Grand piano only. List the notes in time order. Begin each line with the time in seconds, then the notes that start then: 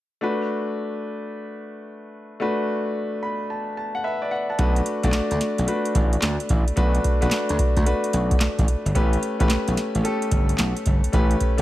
0.21 A3 D4 F#4 B4
2.40 A3 D4 F#4 B4
3.23 B5
3.50 A5
3.77 A5
3.95 F#5
4.04 B4 E5
4.22 B4 D5
4.31 D5 F#5
4.50 F#5 A5
4.59 A3 D4 F#4 B4
5.03 A3 D4 F#4 D5
5.67 A3 D4 F#4 B4
6.76 A3 D4 F#4 B4
7.21 A3 D4 F#4 B4
7.85 A3 D4 F#4 B4
8.95 A3 C#4 G4 B4
9.39 A3 C#4 G4 B4
10.03 A3 C#4 G4 A4
11.12 A3 C#4 G4 B4
11.58 A3 C#4 G4 A4